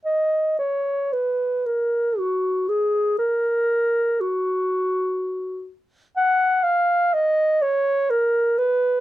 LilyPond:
\new Staff \with { instrumentName = "Clarinet" } { \time 3/4 \key ges \major \tempo 4 = 60 ees''8 des''8 ces''8 bes'8 ges'8 aes'8 | bes'4 ges'4. r8 | ges''8 f''8 ees''8 des''8 bes'8 ces''8 | }